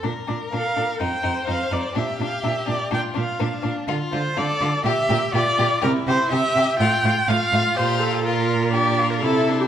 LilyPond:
<<
  \new Staff \with { instrumentName = "Viola" } { \time 4/4 \key bes \lydian \tempo 4 = 124 r8 d''8 f''4 g''4 f''8 d''8 | e''8 f''8 e''8 d''8 g''8 f''4 r8 | r8 c''8 d''4 e''4 d''4 | bes'8 c''8 e''4 g''4 f''4 |
c''8 a'8 bes'4 d''8. bes'16 a'8. g'16 | }
  \new Staff \with { instrumentName = "Violin" } { \time 4/4 \key bes \lydian d'8 d'8 d'8 d'8 ees'8 ees'8 ees'8 ees'8 | d'8 d'8 d'8 d'8 d'8 d'8 d'8 d'8 | f'8 f'8 f'8 f'8 g'8 g'8 g'8 g'8 | g'8 g'8 g'8 g'8 f'8 f'8 f'8 f'8 |
f'4 f'4 g'8 f'8 e'8 d'8 | }
  \new Staff \with { instrumentName = "Violin" } { \time 4/4 \key bes \lydian bes'2 c''2 | g'2 f'4 d'4 | f'4 a'4 g'4 f'4 | e'4 g'4 f'4 f'4 |
g'4 f'4 d'4 e'4 | }
  \new Staff \with { instrumentName = "Cello" } { \clef bass \time 4/4 \key bes \lydian bes,8 bes,8 bes,8 bes,8 f,8 f,8 f,8 f,8 | bes,8 bes,8 bes,8 bes,8 bes,8 bes,8 bes,8 bes,8 | d8 d8 d8 d8 bes,8 bes,8 bes,8 bes,8 | c8 c8 c8 c8 a,8 a,8 a,8 a,8 |
bes,2. c4 | }
>>